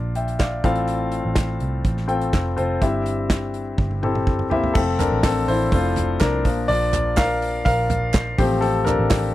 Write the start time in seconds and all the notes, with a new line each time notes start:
Already playing: A#1 A#2 D4 F4 A#4 F5
0.15 E5 G5, closed hi-hat
0.28 closed hi-hat
0.39 D5 F5, kick, snare, clap, closed hi-hat
0.64 A1 A2 C4 F4 A4 F5, kick, closed hi-hat
0.75 closed hi-hat
0.88 closed hi-hat
1.12 closed hi-hat
1.25 A1
1.35 kick, snare, clap, closed hi-hat
1.60 C2, closed hi-hat
1.85 A1, kick, closed hi-hat
1.97 snare
2.08 C4 F4 A4 G5, closed hi-hat
2.21 closed hi-hat
2.33 F1, kick, snare, clap, closed hi-hat
2.56 F1 C4 F4 A4 C5, closed hi-hat
2.81 G1 G2 C4 E4 G4 E5, kick, closed hi-hat
3.06 closed hi-hat
3.30 kick, snare, clap, closed hi-hat
3.54 closed hi-hat
3.78 G1, kick, high tom
3.91 high tom
4.03 C4 E4 G4 A4, mid tom
4.15 mid tom
4.27 kick, mid tom
4.39 mid tom
4.51 A#3 C4 E4 G4 E5, floor tom
4.64 floor tom
4.74 F1 F3 A3 C4 A4, kick, crash
4.99 D4 A#4, clap, floor tom, hi-hat pedal, open hi-hat
5.12 A1
5.23 C4 A4, kick, snare, clap, hi-hat pedal, open hi-hat
5.48 A1 E4 C5, hi-hat pedal, open hi-hat
5.72 F1 F3 A3 C4 F4 C5, kick, hi-hat pedal, open hi-hat
5.96 floor tom, hi-hat pedal, open hi-hat
6.20 C2 A#4, kick, snare, clap, hi-hat pedal, open hi-hat
6.22 D4, clap
6.45 A#1 F3 A#3 D4, kick, hi-hat pedal, open hi-hat
6.68 A#1 F4 D5, hi-hat pedal, open hi-hat
6.93 clap, floor tom, hi-hat pedal, open hi-hat
7.17 A#4 F5, kick, snare, clap, hi-hat pedal, open hi-hat
7.42 hi-hat pedal, open hi-hat
7.65 A#1 A#4 F5, kick, hi-hat pedal, open hi-hat
7.90 floor tom, hi-hat pedal, open hi-hat
8.14 kick, snare, clap, hi-hat pedal, open hi-hat
8.38 A1 F3 A3 C4 G4, kick, hi-hat pedal, open hi-hat
8.61 C4 A4, hi-hat pedal, open hi-hat
8.85 D4 A#4, clap, floor tom, hi-hat pedal, open hi-hat
8.99 A1
9.10 kick, snare, clap, hi-hat pedal, open hi-hat